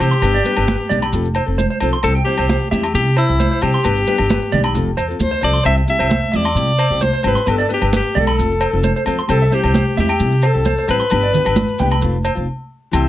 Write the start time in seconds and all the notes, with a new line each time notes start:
0.00 E3 C4 E4 G4, low agogo, maracas
0.11 C6, maracas
0.22 G1 G3 B3 D4 G4 B4, muted conga, low agogo, maracas
0.34 D5, maracas
0.44 G3 B3 D4 G4 B4, muted conga, maracas
0.55 G1 B3 D4 G4 B4, low agogo
0.68 high conga, maracas
0.89 B1 G3 B3 D4 G4 D5, high conga, low conga, maracas
1.02 B5, low agogo, maracas
1.12 F1 F3 C4 F4 A4, muted conga, maracas
1.25 maracas
1.35 C5, low agogo, maracas
1.46 F1 C4 A4, muted clean electric guitar stroke
1.58 C5, high conga, maracas
1.70 C5, maracas
1.80 B1 F3 C4 F4 A4 C5, muted conga, low agogo, maracas
1.93 C6, maracas
2.03 C2 G3 C4 E4 G4 A4 C5, muted conga, low agogo, maracas
2.15 G5, maracas
2.24 G3 C4 E4 G4 C5, muted conga
2.29 G4
2.38 C2 C4 E4 G4 C5, low agogo
2.49 C5, high conga, maracas
2.71 E2 G3 C4 E4 G4 E5, high conga, maracas
2.83 muted clean electric guitar stroke, low agogo, maracas
2.93 C3 G3 C4 E4 G4, muted conga, maracas
3.07 maracas
3.17 E4 C5, low agogo, maracas
3.29 C2 C4 G4, muted clean electric guitar stroke
3.40 C5, high conga, maracas
3.51 C5, maracas
3.61 C3 G3 C4 E4 G4 C5, muted conga, low agogo, maracas
3.73 C6, maracas
3.84 G1 B3 G4 B4, muted clean electric guitar stroke, muted conga, low agogo, maracas
3.96 maracas
4.07 G3 B3 D4 G4 B4, muted conga, maracas
4.18 G1 B3 D4 G4, muted clean electric guitar stroke, low agogo
4.29 B4, high conga, maracas
4.41 maracas
4.51 B1 G3 B3 D4 G4 D5, high conga, low conga, maracas
4.64 B5, low agogo
4.74 F1 F3 C4 F4 A4, muted conga, maracas
4.97 E2 C5, low agogo, maracas
5.08 C4 F4 A4, maracas
5.19 D2 C5, high conga, maracas
5.31 C5
5.41 C2 F3 C4 F4 A4 C5 D5, muted conga, low agogo, maracas
5.53 C6, maracas
5.64 C2 G3 C4 E4 G4 C5 E5, muted conga, low agogo, maracas
5.76 E5, maracas
5.87 G3 C4 E4 G4 E5, muted conga, maracas
5.99 C2 C4 E4 G4 C5, low agogo
6.09 C5, high conga, maracas
6.32 E2 G3 C4 E4 D5 E5, high conga, maracas
6.36 G4
6.45 C6, low agogo, maracas
6.55 C3 G3 C4 E4 G4, muted conga, maracas
6.68 maracas
6.78 C5, low agogo, maracas
6.90 C2 E4 G4
6.94 C4
7.01 C5, high conga, maracas
7.13 C5, maracas
7.23 G#1 G3 C4 E4 G4 C5, muted conga, low agogo, maracas
7.27 B4
7.35 C6, maracas
7.46 G1 B3 D4 G4 B4, muted conga, low agogo, maracas
7.50 A4
7.58 D5, maracas
7.68 B3 D4 G4 B4, muted conga, maracas
7.73 G4
7.80 G1 D4 G4 B4, low agogo
7.93 G4 B4, high conga, maracas
8.14 B1 B3 G4 D5, muted clean electric guitar stroke, high conga, low conga
8.19 A4
8.27 B5, low agogo
8.37 F1 C4 F4 A4, muted clean electric guitar stroke, muted conga, maracas
8.51 maracas
8.61 C5, low agogo, maracas
8.71 F1 C4 F4 A4
8.83 C5, high conga, maracas
8.96 C5, maracas
9.05 F2 F3 C4 F4 A4 C5, muted conga, low agogo, maracas
9.19 C6, maracas
9.27 C2 G3 C4 G4 A4 C5, muted clean electric guitar stroke, muted conga, low agogo, maracas
9.41 E5, maracas
9.50 G3 C4 E4 G4 C5, muted conga, maracas
9.62 C2 C4 E4 G4 C5, low agogo
9.74 C5, high conga, maracas
9.96 E2 G3 C4 E4 G4 E5, high conga, maracas
10.00 G4
10.09 G5, low agogo, maracas
10.19 C3 G3 C4 E4 G4, muted conga, maracas
10.32 maracas
10.42 C5, low agogo, maracas
10.47 A4
10.54 C2 C4 E4 G4
10.65 C5, high conga, maracas
10.78 C5, maracas
10.88 A1 G3 C4 E4 G4 B4 C5, muted conga, low agogo, maracas
11.00 C6, maracas
11.10 G1 B3 D4 G4 B4, muted conga, low agogo, maracas
11.22 D5, maracas
11.33 B3 D4 G4 B4, muted conga, low conga, maracas
11.45 G1 D4 G4 B4, low agogo, maracas
11.56 B4, high conga, maracas
11.68 maracas
11.79 C2 B3 D4 G5, high conga, low conga, maracas
11.83 G4
11.91 B5, low agogo
12.01 F1 A3 C4 F4, muted conga, maracas
12.24 C5, low agogo, maracas
12.35 F1 C4 F4, maracas
12.92 C2 E3 C4 E4 G4 E5 G5 C6, muted conga, low agogo, maracas